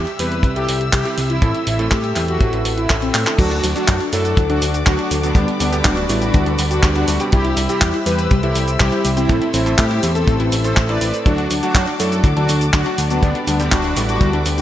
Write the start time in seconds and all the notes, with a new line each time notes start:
Already playing: G3 E5 E6
0.07 closed hi-hat
0.19 E2 C3 G3 C4 E4 G4 B4, open hi-hat
0.32 closed hi-hat
0.43 C2, kick, closed hi-hat
0.56 C2 C3 G3 C4 E4 G4 A4, closed hi-hat
0.69 C2, open hi-hat
0.81 closed hi-hat
0.93 C2 G4, kick, clap, closed hi-hat
1.05 C3 G3 C4 E4 G4, closed hi-hat
1.18 C2, open hi-hat
1.30 E4, closed hi-hat
1.42 A1 A2 A3 C4 E4 A4, kick, closed hi-hat
1.55 closed hi-hat
1.67 A1 E4, open hi-hat
1.79 A2 A3 C4 E4 A4, closed hi-hat
1.91 A2 G4, kick, clap, closed hi-hat
2.04 closed hi-hat
2.16 E2 A2 A3 C4 E4 G4, clap, open hi-hat
2.28 F#4, closed hi-hat
2.41 A1, kick, closed hi-hat
2.53 A1 A2 A3 C4 E4 B4, closed hi-hat
2.65 A1, open hi-hat
2.78 E4, closed hi-hat
2.90 A1 A2 A3 C4 E4 A4, kick, clap, closed hi-hat
3.02 C4, closed hi-hat
3.14 A2, clap, open hi-hat
3.27 D3 A3 C4 E4 A4, clap, closed hi-hat
3.39 D2 F#3 A3 D4 F#4 A4 D5 F#5 D6, kick, closed hi-hat, crash, cabasa
3.51 D4, closed hi-hat
3.63 D2 F#3, open hi-hat, cabasa
3.76 F#3 A3 D4 F#4 F#5, closed hi-hat, cabasa
3.88 F#2 F#3, kick, clap, closed hi-hat, cabasa
4.00 D4, closed hi-hat
4.13 F#2 F#3 A3 D4 E4 F#4 A4, open hi-hat, cabasa
4.25 F#5, closed hi-hat, cabasa
4.37 D2 F#3, kick, closed hi-hat, cabasa
4.49 D2 F#3 A3 D4 F#4 A4, closed hi-hat
4.62 D2 F#3, open hi-hat, cabasa
4.74 F#5, closed hi-hat, cabasa
4.86 D2 F#3 A3 D4 F#4, kick, clap, closed hi-hat, cabasa
4.99 D4, closed hi-hat
5.11 D2 F#3, open hi-hat, cabasa
5.23 F#3 A3 B3 D4 F#4 F#5, closed hi-hat, cabasa
5.35 D2 D3 G3 B3 D4 G4 B4 B5, kick, closed hi-hat, cabasa
5.48 D4, closed hi-hat
5.60 D2 G3 B3 D4, open hi-hat, cabasa
5.72 D3 G3 B3 D4 G4 G5, closed hi-hat, cabasa
5.85 D1 G3 D4 F#4, kick, clap, closed hi-hat, cabasa
5.97 D4, closed hi-hat
6.09 A1 D3 G3 B3 D4 E4, open hi-hat, cabasa
6.22 D4 F#4 G5, closed hi-hat, cabasa
6.34 D2 G3, kick, closed hi-hat, cabasa
6.46 D2 D3 G3 B3 D4 A4, closed hi-hat
6.59 D2 G3, open hi-hat, cabasa
6.71 D4 F#4 G5, closed hi-hat, cabasa
6.83 D2 D3 G3 B3 D4 G4, kick, clap, closed hi-hat, cabasa
6.95 D4 F#4, closed hi-hat
7.08 D2 G3, open hi-hat, cabasa
7.20 C3 G3 B3 D4 G4 G5, closed hi-hat, cabasa
7.32 C2 C3 G3 C4 E4 G4 C5 E5 E6, kick, closed hi-hat, cabasa
7.45 E4, closed hi-hat
7.57 C2 G3, open hi-hat, cabasa
7.69 C3 G3 C4 E4 G4 G5, closed hi-hat, cabasa
7.82 E2 G3, kick, clap, closed hi-hat, cabasa
7.94 E4, closed hi-hat
8.06 E2 C3 G3 C4 E4 G4 B4, open hi-hat, cabasa
8.19 G5, closed hi-hat, cabasa
8.31 C2 G3, kick, closed hi-hat, cabasa
8.43 C2 C3 G3 C4 E4 G4 A4, closed hi-hat
8.55 C2 G3, open hi-hat, cabasa
8.68 G5, closed hi-hat, cabasa
8.80 C2 C3 G3 C4 E4 G4, kick, clap, closed hi-hat, cabasa
8.92 E4, closed hi-hat
9.05 C2 G3, open hi-hat, cabasa
9.17 G3 C4 E4 G4 G5, closed hi-hat, cabasa
9.29 A1 A2 A3 C4 E4 A4 A5 E6, kick, closed hi-hat, cabasa
9.42 E4, closed hi-hat
9.54 A1 A3 C4 E4, open hi-hat, cabasa
9.66 A2 A3 C4 E4 A4 A5, closed hi-hat, cabasa
9.78 A2 A3 E4 G4, kick, clap, closed hi-hat, cabasa
9.91 E4, closed hi-hat
10.03 E2 A2 A3 C4 E4 G4, open hi-hat, cabasa
10.15 C4 A4 A5, closed hi-hat, cabasa
10.27 A1 A3, kick, closed hi-hat, cabasa
10.40 A1 A2 A3 C4 E4 B4, closed hi-hat
10.52 A1 A3, open hi-hat, cabasa
10.64 A2 A3 C4 E4 A4 C5 A5, closed hi-hat, cabasa
10.77 A1 A3, kick, clap, closed hi-hat, cabasa
10.89 A2 A3 C4 E4 A4 B4 D5, closed hi-hat
11.01 A1 A3, open hi-hat, cabasa
11.14 A5, closed hi-hat, cabasa
11.26 D2 F#3 A3 D4 F#4 D5 D6, kick, closed hi-hat, cabasa
11.38 D4, closed hi-hat
11.51 D2 F#3, open hi-hat, cabasa
11.63 F#3 A3 D4 F#4 F#5, closed hi-hat, cabasa
11.75 F#2 F#3, kick, clap, closed hi-hat, cabasa
11.87 D4, closed hi-hat
12.00 F#2 F#3 A3 D4 E4 F#4 A4, open hi-hat, cabasa
12.12 F#5, closed hi-hat, cabasa
12.24 D2 F#3, kick, closed hi-hat, cabasa
12.37 D2 F#3 A3 D4 F#4 A4, closed hi-hat
12.49 D2 F#3, open hi-hat, cabasa
12.61 F#5, closed hi-hat, cabasa
12.73 D2 F#3 A3 D4 F#4, kick, clap, closed hi-hat, cabasa
12.86 D4, closed hi-hat
12.98 D2 F#3, open hi-hat, cabasa
13.10 F#3 A3 B3 D4 F#4 F#5, closed hi-hat, cabasa
13.23 D2 D3 G3 B3 D4 G4 B5 D6, kick, closed hi-hat, cabasa
13.35 D4, closed hi-hat
13.47 D2 G3 B3 D4, open hi-hat, cabasa
13.60 D3 G3 B3 D4 G4 G5, closed hi-hat, cabasa
13.72 D1 G3 D4 F#4, kick, clap, closed hi-hat, cabasa
13.84 D4, closed hi-hat
13.96 A1 D3 G3 B3 D4 E4, open hi-hat, cabasa
14.09 D4 F#4 G5, closed hi-hat, cabasa
14.21 D2 G3, kick, closed hi-hat, cabasa
14.33 D2 D3 G3 B3 D4 A4, closed hi-hat
14.46 D2 G3, open hi-hat, cabasa
14.58 D4 F#4 G5, closed hi-hat, cabasa